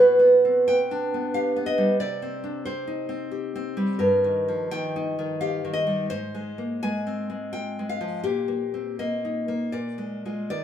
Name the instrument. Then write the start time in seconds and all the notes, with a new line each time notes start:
nylon-string guitar
Already playing: B2 B4
0.19 B3
0.45 C4
0.68 B3 G5
0.91 D4
1.14 B3
1.34 G4 F5
1.56 B3
1.66 D#5
1.78 G3
2.00 C3 D5
2.22 C4
2.44 D4
2.65 C4 C5
2.87 D#4
3.09 C4
3.31 G4
3.56 C4
3.77 G3
3.99 G2 A#4
4.24 D#3
4.48 F3
4.71 D#3 G5
4.96 D#4
5.19 D#3
5.41 G4 F5
5.65 D#3
5.73 D#5
5.87 G3
6.10 G#2 C5
6.35 G#3
6.58 A#3
6.83 G#3 G#5
7.07 C4
7.30 G#3
7.53 F4 G5
7.79 G#3
7.89 F5
8.01 F3
8.24 A#2 G4
8.48 A#3
8.74 C4
8.99 A#3 D#5
9.25 D#4
9.48 A#3
9.72 A#2 D5
9.98 G#3
10.26 G#3 F4
10.50 D#3 D5